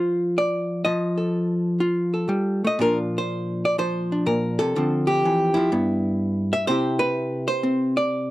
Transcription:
0, 0, Header, 1, 2, 480
1, 0, Start_track
1, 0, Tempo, 487409
1, 827, Time_signature, 4, 2, 24, 8
1, 4679, Tempo, 480769
1, 8228, End_track
2, 0, Start_track
2, 0, Title_t, "Hollow-body jazz guitar"
2, 0, Program_c, 0, 26
2, 0, Note_on_c, 0, 53, 76
2, 0, Note_on_c, 0, 65, 65
2, 0, Note_on_c, 0, 72, 93
2, 373, Note_on_c, 0, 74, 84
2, 829, Note_off_c, 0, 74, 0
2, 832, Note_off_c, 0, 72, 0
2, 833, Note_on_c, 0, 75, 85
2, 838, Note_off_c, 0, 53, 0
2, 842, Note_on_c, 0, 53, 74
2, 862, Note_off_c, 0, 65, 0
2, 1157, Note_on_c, 0, 69, 43
2, 1776, Note_on_c, 0, 65, 55
2, 2100, Note_off_c, 0, 69, 0
2, 2104, Note_on_c, 0, 69, 41
2, 2248, Note_off_c, 0, 53, 0
2, 2252, Note_on_c, 0, 55, 57
2, 2591, Note_off_c, 0, 55, 0
2, 2601, Note_off_c, 0, 75, 0
2, 2605, Note_on_c, 0, 57, 52
2, 2629, Note_on_c, 0, 75, 84
2, 2746, Note_on_c, 0, 46, 64
2, 2756, Note_off_c, 0, 57, 0
2, 2759, Note_off_c, 0, 65, 0
2, 2760, Note_on_c, 0, 53, 43
2, 2763, Note_on_c, 0, 62, 48
2, 2767, Note_off_c, 0, 69, 0
2, 2768, Note_off_c, 0, 75, 0
2, 2771, Note_on_c, 0, 65, 43
2, 2772, Note_on_c, 0, 70, 86
2, 2929, Note_off_c, 0, 70, 0
2, 3132, Note_on_c, 0, 72, 80
2, 3589, Note_off_c, 0, 72, 0
2, 3596, Note_on_c, 0, 74, 84
2, 3722, Note_off_c, 0, 53, 0
2, 3726, Note_on_c, 0, 53, 54
2, 3728, Note_off_c, 0, 74, 0
2, 3732, Note_on_c, 0, 72, 83
2, 4047, Note_off_c, 0, 62, 0
2, 4059, Note_on_c, 0, 62, 42
2, 4188, Note_off_c, 0, 46, 0
2, 4198, Note_off_c, 0, 72, 0
2, 4198, Note_on_c, 0, 46, 63
2, 4202, Note_on_c, 0, 70, 72
2, 4515, Note_off_c, 0, 65, 0
2, 4519, Note_on_c, 0, 69, 92
2, 4524, Note_off_c, 0, 46, 0
2, 4535, Note_on_c, 0, 48, 54
2, 4666, Note_off_c, 0, 62, 0
2, 4677, Note_off_c, 0, 70, 0
2, 4681, Note_off_c, 0, 53, 0
2, 4683, Note_off_c, 0, 48, 0
2, 4690, Note_on_c, 0, 50, 72
2, 4694, Note_on_c, 0, 53, 45
2, 4708, Note_on_c, 0, 60, 48
2, 4998, Note_on_c, 0, 67, 83
2, 5164, Note_off_c, 0, 50, 0
2, 5181, Note_on_c, 0, 52, 59
2, 5463, Note_off_c, 0, 69, 0
2, 5467, Note_on_c, 0, 64, 83
2, 5483, Note_off_c, 0, 53, 0
2, 5494, Note_off_c, 0, 52, 0
2, 5495, Note_on_c, 0, 53, 58
2, 5634, Note_off_c, 0, 60, 0
2, 5634, Note_off_c, 0, 67, 0
2, 5643, Note_off_c, 0, 53, 0
2, 5646, Note_on_c, 0, 43, 67
2, 5652, Note_on_c, 0, 59, 46
2, 6453, Note_on_c, 0, 76, 103
2, 6586, Note_off_c, 0, 59, 0
2, 6589, Note_off_c, 0, 64, 0
2, 6594, Note_off_c, 0, 76, 0
2, 6598, Note_on_c, 0, 72, 106
2, 6601, Note_off_c, 0, 43, 0
2, 6603, Note_on_c, 0, 48, 71
2, 6608, Note_on_c, 0, 60, 47
2, 6624, Note_on_c, 0, 64, 53
2, 6632, Note_on_c, 0, 67, 52
2, 6912, Note_off_c, 0, 67, 0
2, 6916, Note_on_c, 0, 71, 92
2, 7388, Note_off_c, 0, 72, 0
2, 7400, Note_on_c, 0, 72, 94
2, 7545, Note_off_c, 0, 60, 0
2, 7557, Note_on_c, 0, 60, 62
2, 7880, Note_off_c, 0, 71, 0
2, 7882, Note_off_c, 0, 72, 0
2, 7892, Note_on_c, 0, 74, 93
2, 8228, Note_off_c, 0, 48, 0
2, 8228, Note_off_c, 0, 60, 0
2, 8228, Note_off_c, 0, 64, 0
2, 8228, Note_off_c, 0, 74, 0
2, 8228, End_track
0, 0, End_of_file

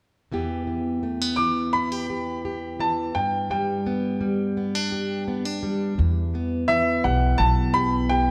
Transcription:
0, 0, Header, 1, 4, 480
1, 0, Start_track
1, 0, Key_signature, 1, "minor"
1, 0, Tempo, 709220
1, 210, Time_signature, 4, 2, 24, 8
1, 5623, End_track
2, 0, Start_track
2, 0, Title_t, "Upright piano"
2, 0, Program_c, 0, 0
2, 921, Note_on_c, 0, 86, 66
2, 1149, Note_off_c, 0, 86, 0
2, 1170, Note_on_c, 0, 83, 72
2, 1898, Note_on_c, 0, 81, 57
2, 1913, Note_off_c, 0, 83, 0
2, 2130, Note_on_c, 0, 79, 62
2, 2142, Note_off_c, 0, 81, 0
2, 2364, Note_off_c, 0, 79, 0
2, 2374, Note_on_c, 0, 79, 50
2, 3786, Note_off_c, 0, 79, 0
2, 4520, Note_on_c, 0, 76, 74
2, 4749, Note_off_c, 0, 76, 0
2, 4765, Note_on_c, 0, 78, 63
2, 4994, Note_on_c, 0, 81, 77
2, 5016, Note_off_c, 0, 78, 0
2, 5236, Note_on_c, 0, 83, 82
2, 5250, Note_off_c, 0, 81, 0
2, 5478, Note_on_c, 0, 79, 73
2, 5491, Note_off_c, 0, 83, 0
2, 5623, Note_off_c, 0, 79, 0
2, 5623, End_track
3, 0, Start_track
3, 0, Title_t, "Steel-string acoustic guitar"
3, 0, Program_c, 1, 25
3, 213, Note_on_c, 1, 40, 51
3, 219, Note_on_c, 1, 52, 42
3, 226, Note_on_c, 1, 59, 41
3, 229, Note_on_c, 1, 67, 47
3, 445, Note_off_c, 1, 52, 0
3, 454, Note_on_c, 1, 52, 42
3, 693, Note_off_c, 1, 59, 0
3, 696, Note_on_c, 1, 57, 37
3, 822, Note_off_c, 1, 57, 0
3, 822, Note_on_c, 1, 59, 36
3, 927, Note_off_c, 1, 52, 0
3, 935, Note_on_c, 1, 52, 44
3, 1178, Note_off_c, 1, 67, 0
3, 1180, Note_on_c, 1, 64, 38
3, 1298, Note_off_c, 1, 64, 0
3, 1298, Note_on_c, 1, 67, 42
3, 1412, Note_off_c, 1, 67, 0
3, 1420, Note_on_c, 1, 67, 53
3, 1656, Note_off_c, 1, 67, 0
3, 1658, Note_on_c, 1, 67, 43
3, 1884, Note_off_c, 1, 52, 0
3, 1892, Note_on_c, 1, 52, 47
3, 2132, Note_off_c, 1, 40, 0
3, 2132, Note_off_c, 1, 52, 0
3, 2134, Note_on_c, 1, 43, 55
3, 2137, Note_off_c, 1, 59, 0
3, 2371, Note_on_c, 1, 55, 46
3, 2616, Note_on_c, 1, 59, 47
3, 2839, Note_off_c, 1, 55, 0
3, 2847, Note_on_c, 1, 55, 46
3, 3086, Note_off_c, 1, 59, 0
3, 3094, Note_on_c, 1, 59, 40
3, 3215, Note_off_c, 1, 59, 0
3, 3215, Note_on_c, 1, 62, 37
3, 3327, Note_off_c, 1, 67, 0
3, 3330, Note_on_c, 1, 67, 44
3, 3569, Note_off_c, 1, 62, 0
3, 3571, Note_on_c, 1, 59, 43
3, 3691, Note_off_c, 1, 59, 0
3, 3691, Note_on_c, 1, 62, 35
3, 3801, Note_off_c, 1, 55, 0
3, 3809, Note_on_c, 1, 55, 42
3, 4022, Note_off_c, 1, 55, 0
3, 4022, Note_off_c, 1, 67, 0
3, 4024, Note_off_c, 1, 43, 0
3, 4048, Note_on_c, 1, 40, 53
3, 4051, Note_off_c, 1, 62, 0
3, 4297, Note_on_c, 1, 59, 45
3, 4526, Note_on_c, 1, 52, 51
3, 4769, Note_on_c, 1, 67, 49
3, 5008, Note_on_c, 1, 47, 45
3, 5241, Note_off_c, 1, 67, 0
3, 5249, Note_on_c, 1, 67, 54
3, 5481, Note_off_c, 1, 67, 0
3, 5489, Note_on_c, 1, 67, 54
3, 5623, Note_off_c, 1, 40, 0
3, 5623, Note_off_c, 1, 47, 0
3, 5623, Note_off_c, 1, 52, 0
3, 5623, Note_off_c, 1, 59, 0
3, 5623, Note_off_c, 1, 67, 0
3, 5623, End_track
4, 0, Start_track
4, 0, Title_t, "Upright bass"
4, 0, Program_c, 2, 32
4, 4052, Note_on_c, 2, 40, 68
4, 4280, Note_off_c, 2, 40, 0
4, 4770, Note_on_c, 2, 35, 56
4, 4999, Note_off_c, 2, 35, 0
4, 5007, Note_on_c, 2, 35, 74
4, 5623, Note_off_c, 2, 35, 0
4, 5623, End_track
0, 0, End_of_file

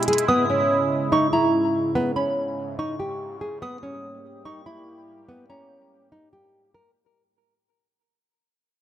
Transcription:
0, 0, Header, 1, 5, 480
1, 0, Start_track
1, 0, Tempo, 416667
1, 329, Time_signature, 4, 2, 24, 8
1, 10156, End_track
2, 0, Start_track
2, 0, Title_t, "Synth bell"
2, 0, Program_c, 0, 98
2, 326, Note_on_c, 0, 87, 100
2, 1242, Note_off_c, 0, 87, 0
2, 1296, Note_on_c, 0, 85, 86
2, 1521, Note_off_c, 0, 85, 0
2, 1530, Note_on_c, 0, 82, 80
2, 1758, Note_off_c, 0, 82, 0
2, 2488, Note_on_c, 0, 83, 77
2, 2717, Note_off_c, 0, 83, 0
2, 3212, Note_on_c, 0, 85, 85
2, 4125, Note_off_c, 0, 85, 0
2, 4175, Note_on_c, 0, 87, 105
2, 5086, Note_off_c, 0, 87, 0
2, 5130, Note_on_c, 0, 85, 84
2, 5358, Note_off_c, 0, 85, 0
2, 5370, Note_on_c, 0, 83, 73
2, 5598, Note_off_c, 0, 83, 0
2, 6332, Note_on_c, 0, 82, 77
2, 6559, Note_off_c, 0, 82, 0
2, 10156, End_track
3, 0, Start_track
3, 0, Title_t, "Nylon-string guitar"
3, 0, Program_c, 1, 24
3, 91, Note_on_c, 1, 68, 75
3, 271, Note_off_c, 1, 68, 0
3, 330, Note_on_c, 1, 59, 97
3, 511, Note_off_c, 1, 59, 0
3, 572, Note_on_c, 1, 61, 73
3, 1248, Note_off_c, 1, 61, 0
3, 1292, Note_on_c, 1, 63, 82
3, 1471, Note_off_c, 1, 63, 0
3, 1533, Note_on_c, 1, 64, 82
3, 2208, Note_off_c, 1, 64, 0
3, 2251, Note_on_c, 1, 59, 103
3, 2431, Note_off_c, 1, 59, 0
3, 2491, Note_on_c, 1, 61, 76
3, 3167, Note_off_c, 1, 61, 0
3, 3213, Note_on_c, 1, 63, 84
3, 3392, Note_off_c, 1, 63, 0
3, 3451, Note_on_c, 1, 67, 76
3, 3901, Note_off_c, 1, 67, 0
3, 3930, Note_on_c, 1, 68, 73
3, 4111, Note_off_c, 1, 68, 0
3, 4171, Note_on_c, 1, 59, 114
3, 4351, Note_off_c, 1, 59, 0
3, 4411, Note_on_c, 1, 61, 76
3, 5087, Note_off_c, 1, 61, 0
3, 5130, Note_on_c, 1, 63, 86
3, 5311, Note_off_c, 1, 63, 0
3, 5370, Note_on_c, 1, 64, 78
3, 6046, Note_off_c, 1, 64, 0
3, 6089, Note_on_c, 1, 59, 99
3, 6270, Note_off_c, 1, 59, 0
3, 6331, Note_on_c, 1, 61, 79
3, 7007, Note_off_c, 1, 61, 0
3, 7051, Note_on_c, 1, 63, 81
3, 7231, Note_off_c, 1, 63, 0
3, 7290, Note_on_c, 1, 67, 72
3, 7741, Note_off_c, 1, 67, 0
3, 7770, Note_on_c, 1, 70, 77
3, 7951, Note_off_c, 1, 70, 0
3, 10156, End_track
4, 0, Start_track
4, 0, Title_t, "Analog synth pad"
4, 0, Program_c, 2, 89
4, 0, Note_on_c, 2, 47, 81
4, 0, Note_on_c, 2, 56, 75
4, 0, Note_on_c, 2, 64, 89
4, 284, Note_off_c, 2, 47, 0
4, 330, Note_on_c, 2, 44, 81
4, 331, Note_on_c, 2, 49, 74
4, 4124, Note_off_c, 2, 56, 0
4, 4124, Note_off_c, 2, 64, 0
4, 4132, Note_off_c, 2, 49, 0
4, 4168, Note_on_c, 2, 58, 74
4, 4168, Note_on_c, 2, 67, 88
4, 4169, Note_on_c, 2, 55, 75
4, 7964, Note_off_c, 2, 44, 0
4, 7970, Note_off_c, 2, 67, 0
4, 7971, Note_off_c, 2, 55, 0
4, 7971, Note_off_c, 2, 58, 0
4, 10156, End_track
5, 0, Start_track
5, 0, Title_t, "Drums"
5, 31, Note_on_c, 9, 42, 45
5, 91, Note_off_c, 9, 42, 0
5, 91, Note_on_c, 9, 42, 50
5, 150, Note_off_c, 9, 42, 0
5, 150, Note_on_c, 9, 42, 59
5, 211, Note_off_c, 9, 42, 0
5, 211, Note_on_c, 9, 42, 79
5, 326, Note_off_c, 9, 42, 0
5, 10156, End_track
0, 0, End_of_file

